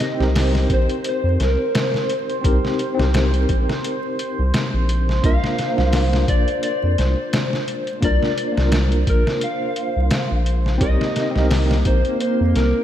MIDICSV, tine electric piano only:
0, 0, Header, 1, 2, 480
1, 0, Start_track
1, 0, Key_signature, -3, "minor"
1, 0, Tempo, 697674
1, 1678, Time_signature, 4, 2, 24, 8
1, 8833, End_track
2, 0, Start_track
2, 0, Title_t, "Tine electric piano"
2, 0, Program_c, 0, 4
2, 0, Control_c, 0, 64, 127
2, 0, Note_on_c, 0, 60, 80
2, 0, Note_on_c, 0, 63, 69
2, 0, Note_on_c, 0, 67, 75
2, 0, Note_on_c, 0, 70, 86
2, 92, Note_off_c, 0, 60, 0
2, 100, Note_off_c, 0, 63, 0
2, 101, Note_on_c, 0, 60, 77
2, 106, Note_off_c, 0, 67, 0
2, 110, Note_off_c, 0, 70, 0
2, 121, Note_on_c, 0, 63, 67
2, 140, Note_on_c, 0, 67, 66
2, 162, Note_on_c, 0, 70, 78
2, 1637, Note_off_c, 0, 60, 0
2, 1647, Note_off_c, 0, 63, 0
2, 1657, Note_off_c, 0, 67, 0
2, 1659, Note_on_c, 0, 60, 79
2, 1668, Note_off_c, 0, 70, 0
2, 1669, Note_on_c, 0, 63, 71
2, 1679, Note_on_c, 0, 67, 76
2, 1690, Note_on_c, 0, 70, 92
2, 2011, Note_off_c, 0, 60, 0
2, 2016, Note_off_c, 0, 63, 0
2, 2021, Note_off_c, 0, 67, 0
2, 2026, Note_off_c, 0, 70, 0
2, 2027, Note_on_c, 0, 60, 77
2, 2045, Note_on_c, 0, 63, 71
2, 2067, Note_on_c, 0, 67, 74
2, 2087, Note_on_c, 0, 70, 90
2, 3560, Note_off_c, 0, 60, 0
2, 3569, Note_off_c, 0, 63, 0
2, 3580, Note_off_c, 0, 67, 0
2, 3590, Note_off_c, 0, 70, 0
2, 3591, Note_on_c, 0, 58, 82
2, 3599, Note_on_c, 0, 62, 76
2, 3607, Control_c, 0, 64, 0
2, 3611, Note_on_c, 0, 65, 75
2, 3620, Note_on_c, 0, 70, 94
2, 3716, Control_c, 0, 64, 127
2, 3936, Note_off_c, 0, 58, 0
2, 3940, Note_off_c, 0, 62, 0
2, 3947, Note_off_c, 0, 65, 0
2, 3948, Note_on_c, 0, 58, 74
2, 3951, Note_off_c, 0, 70, 0
2, 3968, Note_on_c, 0, 62, 74
2, 3991, Note_on_c, 0, 65, 72
2, 4011, Note_on_c, 0, 70, 85
2, 5481, Note_off_c, 0, 58, 0
2, 5491, Note_off_c, 0, 62, 0
2, 5502, Note_off_c, 0, 65, 0
2, 5508, Note_on_c, 0, 58, 79
2, 5512, Note_off_c, 0, 70, 0
2, 5519, Note_on_c, 0, 62, 71
2, 5527, Note_on_c, 0, 65, 73
2, 5539, Note_on_c, 0, 70, 88
2, 5855, Note_off_c, 0, 58, 0
2, 5860, Note_off_c, 0, 62, 0
2, 5863, Note_on_c, 0, 58, 77
2, 5865, Note_off_c, 0, 65, 0
2, 5871, Note_off_c, 0, 70, 0
2, 5883, Note_on_c, 0, 62, 66
2, 5905, Note_on_c, 0, 65, 69
2, 5927, Note_on_c, 0, 70, 85
2, 7398, Note_off_c, 0, 58, 0
2, 7408, Note_off_c, 0, 62, 0
2, 7417, Note_on_c, 0, 60, 80
2, 7419, Note_off_c, 0, 65, 0
2, 7427, Note_on_c, 0, 63, 76
2, 7430, Note_off_c, 0, 70, 0
2, 7438, Note_on_c, 0, 67, 73
2, 7446, Control_c, 0, 64, 0
2, 7450, Note_on_c, 0, 70, 88
2, 7572, Control_c, 0, 64, 127
2, 7769, Note_off_c, 0, 60, 0
2, 7774, Note_off_c, 0, 63, 0
2, 7780, Note_off_c, 0, 67, 0
2, 7780, Note_on_c, 0, 60, 81
2, 7786, Note_off_c, 0, 70, 0
2, 7801, Note_on_c, 0, 63, 72
2, 7819, Note_on_c, 0, 67, 71
2, 7839, Note_on_c, 0, 70, 86
2, 8833, Note_off_c, 0, 60, 0
2, 8833, Note_off_c, 0, 63, 0
2, 8833, Note_off_c, 0, 67, 0
2, 8833, Note_off_c, 0, 70, 0
2, 8833, End_track
0, 0, End_of_file